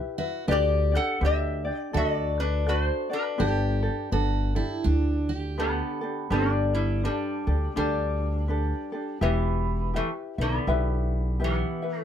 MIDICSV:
0, 0, Header, 1, 5, 480
1, 0, Start_track
1, 0, Key_signature, 1, "major"
1, 0, Tempo, 728155
1, 317, Time_signature, 4, 2, 24, 8
1, 7937, End_track
2, 0, Start_track
2, 0, Title_t, "Ukulele"
2, 0, Program_c, 0, 24
2, 0, Note_on_c, 0, 64, 65
2, 0, Note_on_c, 0, 67, 66
2, 0, Note_on_c, 0, 71, 79
2, 0, Note_on_c, 0, 76, 77
2, 113, Note_off_c, 0, 76, 0
2, 121, Note_off_c, 0, 71, 0
2, 121, Note_on_c, 0, 76, 54
2, 124, Note_off_c, 0, 64, 0
2, 125, Note_off_c, 0, 67, 0
2, 129, Note_on_c, 0, 71, 49
2, 132, Note_on_c, 0, 64, 46
2, 305, Note_off_c, 0, 71, 0
2, 312, Note_off_c, 0, 64, 0
2, 313, Note_on_c, 0, 71, 85
2, 314, Note_off_c, 0, 76, 0
2, 315, Note_on_c, 0, 62, 84
2, 320, Note_on_c, 0, 67, 82
2, 323, Note_on_c, 0, 74, 93
2, 596, Note_off_c, 0, 74, 0
2, 603, Note_on_c, 0, 74, 50
2, 604, Note_off_c, 0, 71, 0
2, 605, Note_off_c, 0, 62, 0
2, 605, Note_off_c, 0, 67, 0
2, 613, Note_on_c, 0, 67, 43
2, 615, Note_on_c, 0, 62, 42
2, 795, Note_off_c, 0, 74, 0
2, 796, Note_on_c, 0, 71, 63
2, 797, Note_off_c, 0, 62, 0
2, 800, Note_off_c, 0, 67, 0
2, 804, Note_on_c, 0, 62, 53
2, 808, Note_on_c, 0, 67, 65
2, 809, Note_on_c, 0, 74, 60
2, 1077, Note_off_c, 0, 74, 0
2, 1085, Note_off_c, 0, 71, 0
2, 1085, Note_on_c, 0, 74, 58
2, 1086, Note_off_c, 0, 67, 0
2, 1089, Note_off_c, 0, 62, 0
2, 1093, Note_on_c, 0, 67, 46
2, 1100, Note_on_c, 0, 62, 44
2, 1269, Note_off_c, 0, 62, 0
2, 1274, Note_on_c, 0, 69, 73
2, 1276, Note_off_c, 0, 74, 0
2, 1277, Note_on_c, 0, 62, 65
2, 1278, Note_off_c, 0, 67, 0
2, 1280, Note_on_c, 0, 66, 73
2, 1284, Note_on_c, 0, 74, 75
2, 1752, Note_off_c, 0, 69, 0
2, 1755, Note_on_c, 0, 69, 55
2, 1758, Note_off_c, 0, 66, 0
2, 1760, Note_off_c, 0, 62, 0
2, 1763, Note_on_c, 0, 62, 55
2, 1766, Note_on_c, 0, 66, 72
2, 1767, Note_off_c, 0, 74, 0
2, 1770, Note_on_c, 0, 74, 68
2, 2033, Note_off_c, 0, 74, 0
2, 2039, Note_off_c, 0, 66, 0
2, 2041, Note_on_c, 0, 74, 46
2, 2044, Note_off_c, 0, 69, 0
2, 2046, Note_off_c, 0, 62, 0
2, 2047, Note_on_c, 0, 66, 49
2, 2054, Note_on_c, 0, 62, 41
2, 2223, Note_off_c, 0, 62, 0
2, 2228, Note_on_c, 0, 71, 77
2, 2231, Note_off_c, 0, 66, 0
2, 2231, Note_on_c, 0, 62, 81
2, 2233, Note_off_c, 0, 74, 0
2, 2233, Note_on_c, 0, 67, 91
2, 2239, Note_on_c, 0, 69, 83
2, 2514, Note_off_c, 0, 69, 0
2, 2521, Note_off_c, 0, 67, 0
2, 2521, Note_off_c, 0, 71, 0
2, 2522, Note_off_c, 0, 62, 0
2, 2522, Note_on_c, 0, 69, 55
2, 2528, Note_on_c, 0, 67, 44
2, 2535, Note_on_c, 0, 62, 44
2, 2710, Note_off_c, 0, 62, 0
2, 2710, Note_off_c, 0, 69, 0
2, 2712, Note_on_c, 0, 71, 59
2, 2717, Note_off_c, 0, 67, 0
2, 2718, Note_on_c, 0, 62, 67
2, 2724, Note_on_c, 0, 69, 66
2, 2992, Note_off_c, 0, 69, 0
2, 2997, Note_off_c, 0, 71, 0
2, 3000, Note_on_c, 0, 69, 61
2, 3003, Note_off_c, 0, 62, 0
2, 3006, Note_on_c, 0, 67, 51
2, 3011, Note_on_c, 0, 62, 44
2, 3673, Note_off_c, 0, 67, 0
2, 3676, Note_on_c, 0, 71, 57
2, 3677, Note_off_c, 0, 62, 0
2, 3680, Note_on_c, 0, 62, 66
2, 3683, Note_off_c, 0, 69, 0
2, 3683, Note_on_c, 0, 67, 67
2, 3686, Note_on_c, 0, 69, 73
2, 3954, Note_off_c, 0, 69, 0
2, 3962, Note_on_c, 0, 69, 53
2, 3964, Note_off_c, 0, 71, 0
2, 3966, Note_off_c, 0, 62, 0
2, 3966, Note_off_c, 0, 67, 0
2, 3974, Note_on_c, 0, 67, 50
2, 3977, Note_on_c, 0, 62, 43
2, 4148, Note_off_c, 0, 62, 0
2, 4152, Note_off_c, 0, 67, 0
2, 4154, Note_off_c, 0, 69, 0
2, 4155, Note_on_c, 0, 71, 73
2, 4156, Note_on_c, 0, 62, 81
2, 4160, Note_on_c, 0, 67, 72
2, 4163, Note_on_c, 0, 69, 85
2, 4632, Note_off_c, 0, 62, 0
2, 4633, Note_off_c, 0, 71, 0
2, 4635, Note_on_c, 0, 71, 48
2, 4639, Note_off_c, 0, 67, 0
2, 4639, Note_off_c, 0, 69, 0
2, 4640, Note_on_c, 0, 62, 52
2, 4641, Note_on_c, 0, 67, 56
2, 4647, Note_on_c, 0, 69, 59
2, 4915, Note_off_c, 0, 69, 0
2, 4922, Note_off_c, 0, 67, 0
2, 4923, Note_on_c, 0, 69, 42
2, 4924, Note_off_c, 0, 71, 0
2, 4926, Note_off_c, 0, 62, 0
2, 4930, Note_on_c, 0, 67, 47
2, 4935, Note_on_c, 0, 62, 40
2, 5107, Note_off_c, 0, 62, 0
2, 5113, Note_off_c, 0, 67, 0
2, 5114, Note_off_c, 0, 69, 0
2, 5115, Note_on_c, 0, 62, 69
2, 5116, Note_on_c, 0, 71, 65
2, 5122, Note_on_c, 0, 67, 82
2, 5123, Note_on_c, 0, 69, 77
2, 5588, Note_off_c, 0, 71, 0
2, 5589, Note_off_c, 0, 62, 0
2, 5591, Note_on_c, 0, 71, 58
2, 5596, Note_off_c, 0, 69, 0
2, 5597, Note_off_c, 0, 67, 0
2, 5597, Note_on_c, 0, 62, 58
2, 5600, Note_on_c, 0, 67, 56
2, 5604, Note_on_c, 0, 69, 63
2, 5872, Note_off_c, 0, 69, 0
2, 5880, Note_off_c, 0, 67, 0
2, 5880, Note_on_c, 0, 69, 51
2, 5882, Note_off_c, 0, 71, 0
2, 5885, Note_off_c, 0, 62, 0
2, 5888, Note_on_c, 0, 67, 39
2, 5897, Note_on_c, 0, 62, 43
2, 6064, Note_off_c, 0, 67, 0
2, 6071, Note_off_c, 0, 62, 0
2, 6072, Note_on_c, 0, 67, 84
2, 6073, Note_off_c, 0, 69, 0
2, 6073, Note_on_c, 0, 64, 84
2, 6078, Note_on_c, 0, 71, 77
2, 6079, Note_on_c, 0, 76, 85
2, 6547, Note_off_c, 0, 67, 0
2, 6549, Note_on_c, 0, 67, 52
2, 6551, Note_off_c, 0, 64, 0
2, 6554, Note_off_c, 0, 71, 0
2, 6554, Note_on_c, 0, 64, 54
2, 6557, Note_on_c, 0, 71, 57
2, 6560, Note_off_c, 0, 76, 0
2, 6563, Note_on_c, 0, 76, 57
2, 6836, Note_off_c, 0, 76, 0
2, 6842, Note_off_c, 0, 67, 0
2, 6843, Note_off_c, 0, 71, 0
2, 6844, Note_off_c, 0, 64, 0
2, 6844, Note_on_c, 0, 76, 43
2, 6851, Note_on_c, 0, 71, 42
2, 6856, Note_on_c, 0, 64, 41
2, 7030, Note_off_c, 0, 64, 0
2, 7034, Note_off_c, 0, 71, 0
2, 7034, Note_off_c, 0, 76, 0
2, 7036, Note_on_c, 0, 67, 74
2, 7038, Note_on_c, 0, 64, 82
2, 7042, Note_on_c, 0, 71, 85
2, 7042, Note_on_c, 0, 76, 87
2, 7510, Note_off_c, 0, 67, 0
2, 7512, Note_on_c, 0, 67, 61
2, 7515, Note_off_c, 0, 64, 0
2, 7517, Note_on_c, 0, 64, 58
2, 7518, Note_off_c, 0, 71, 0
2, 7521, Note_off_c, 0, 76, 0
2, 7521, Note_on_c, 0, 71, 64
2, 7524, Note_on_c, 0, 76, 60
2, 7786, Note_off_c, 0, 76, 0
2, 7793, Note_off_c, 0, 71, 0
2, 7794, Note_on_c, 0, 76, 47
2, 7801, Note_off_c, 0, 64, 0
2, 7801, Note_on_c, 0, 71, 42
2, 7805, Note_off_c, 0, 67, 0
2, 7809, Note_on_c, 0, 64, 41
2, 7937, Note_off_c, 0, 64, 0
2, 7937, Note_off_c, 0, 71, 0
2, 7937, Note_off_c, 0, 76, 0
2, 7937, End_track
3, 0, Start_track
3, 0, Title_t, "Steel-string acoustic guitar"
3, 0, Program_c, 1, 25
3, 119, Note_on_c, 1, 66, 80
3, 314, Note_off_c, 1, 66, 0
3, 317, Note_on_c, 1, 67, 88
3, 1278, Note_off_c, 1, 67, 0
3, 1281, Note_on_c, 1, 69, 82
3, 2238, Note_off_c, 1, 69, 0
3, 2241, Note_on_c, 1, 67, 91
3, 2716, Note_off_c, 1, 67, 0
3, 2718, Note_on_c, 1, 66, 85
3, 3004, Note_off_c, 1, 66, 0
3, 3007, Note_on_c, 1, 64, 75
3, 3192, Note_on_c, 1, 62, 74
3, 3202, Note_off_c, 1, 64, 0
3, 3487, Note_on_c, 1, 67, 74
3, 3491, Note_off_c, 1, 62, 0
3, 3939, Note_off_c, 1, 67, 0
3, 7937, End_track
4, 0, Start_track
4, 0, Title_t, "Resonator guitar played with a steel bar"
4, 0, Program_c, 2, 25
4, 336, Note_on_c, 2, 67, 75
4, 345, Note_on_c, 2, 74, 94
4, 596, Note_off_c, 2, 67, 0
4, 628, Note_off_c, 2, 74, 0
4, 629, Note_on_c, 2, 69, 74
4, 636, Note_on_c, 2, 78, 95
4, 795, Note_off_c, 2, 69, 0
4, 817, Note_off_c, 2, 78, 0
4, 822, Note_on_c, 2, 67, 70
4, 830, Note_on_c, 2, 76, 95
4, 1186, Note_off_c, 2, 76, 0
4, 1186, Note_on_c, 2, 74, 95
4, 1263, Note_off_c, 2, 67, 0
4, 1297, Note_off_c, 2, 74, 0
4, 1297, Note_on_c, 2, 66, 67
4, 1299, Note_on_c, 2, 75, 89
4, 1412, Note_off_c, 2, 75, 0
4, 1412, Note_on_c, 2, 74, 89
4, 1556, Note_off_c, 2, 66, 0
4, 1582, Note_on_c, 2, 71, 89
4, 1585, Note_off_c, 2, 74, 0
4, 1585, Note_on_c, 2, 62, 68
4, 1753, Note_off_c, 2, 62, 0
4, 1769, Note_off_c, 2, 71, 0
4, 1772, Note_on_c, 2, 66, 60
4, 1775, Note_on_c, 2, 71, 82
4, 1848, Note_off_c, 2, 71, 0
4, 1848, Note_on_c, 2, 72, 82
4, 2034, Note_off_c, 2, 66, 0
4, 2062, Note_off_c, 2, 72, 0
4, 2065, Note_on_c, 2, 71, 76
4, 2068, Note_on_c, 2, 62, 62
4, 3689, Note_on_c, 2, 59, 76
4, 3692, Note_on_c, 2, 50, 58
4, 3948, Note_off_c, 2, 71, 0
4, 3949, Note_off_c, 2, 62, 0
4, 4137, Note_off_c, 2, 50, 0
4, 4165, Note_on_c, 2, 62, 74
4, 4174, Note_on_c, 2, 55, 60
4, 4176, Note_off_c, 2, 59, 0
4, 4434, Note_off_c, 2, 55, 0
4, 4444, Note_off_c, 2, 62, 0
4, 4447, Note_on_c, 2, 64, 77
4, 4450, Note_on_c, 2, 55, 64
4, 4625, Note_off_c, 2, 55, 0
4, 4641, Note_off_c, 2, 64, 0
4, 4647, Note_on_c, 2, 62, 81
4, 4650, Note_on_c, 2, 55, 60
4, 5096, Note_off_c, 2, 55, 0
4, 5114, Note_off_c, 2, 62, 0
4, 5121, Note_on_c, 2, 62, 79
4, 5125, Note_on_c, 2, 55, 62
4, 6054, Note_off_c, 2, 55, 0
4, 6078, Note_off_c, 2, 62, 0
4, 6081, Note_on_c, 2, 59, 82
4, 6086, Note_on_c, 2, 52, 65
4, 6535, Note_off_c, 2, 52, 0
4, 6567, Note_on_c, 2, 57, 76
4, 6571, Note_on_c, 2, 52, 62
4, 6573, Note_off_c, 2, 59, 0
4, 6643, Note_off_c, 2, 57, 0
4, 6647, Note_off_c, 2, 52, 0
4, 6864, Note_on_c, 2, 59, 91
4, 6869, Note_on_c, 2, 50, 70
4, 7503, Note_off_c, 2, 50, 0
4, 7533, Note_off_c, 2, 59, 0
4, 7542, Note_on_c, 2, 52, 63
4, 7543, Note_on_c, 2, 59, 78
4, 7899, Note_off_c, 2, 59, 0
4, 7899, Note_on_c, 2, 57, 78
4, 7937, Note_off_c, 2, 52, 0
4, 7937, Note_off_c, 2, 57, 0
4, 7937, End_track
5, 0, Start_track
5, 0, Title_t, "Upright bass"
5, 0, Program_c, 3, 32
5, 318, Note_on_c, 3, 38, 103
5, 629, Note_off_c, 3, 38, 0
5, 798, Note_on_c, 3, 38, 90
5, 1110, Note_off_c, 3, 38, 0
5, 1280, Note_on_c, 3, 38, 87
5, 1902, Note_off_c, 3, 38, 0
5, 2240, Note_on_c, 3, 31, 98
5, 2550, Note_off_c, 3, 31, 0
5, 2717, Note_on_c, 3, 31, 89
5, 3028, Note_off_c, 3, 31, 0
5, 3199, Note_on_c, 3, 38, 92
5, 3822, Note_off_c, 3, 38, 0
5, 4157, Note_on_c, 3, 31, 102
5, 4656, Note_off_c, 3, 31, 0
5, 4924, Note_on_c, 3, 38, 87
5, 5048, Note_off_c, 3, 38, 0
5, 5119, Note_on_c, 3, 38, 87
5, 5742, Note_off_c, 3, 38, 0
5, 6074, Note_on_c, 3, 28, 96
5, 6575, Note_off_c, 3, 28, 0
5, 6844, Note_on_c, 3, 35, 89
5, 6969, Note_off_c, 3, 35, 0
5, 7036, Note_on_c, 3, 35, 87
5, 7661, Note_off_c, 3, 35, 0
5, 7937, End_track
0, 0, End_of_file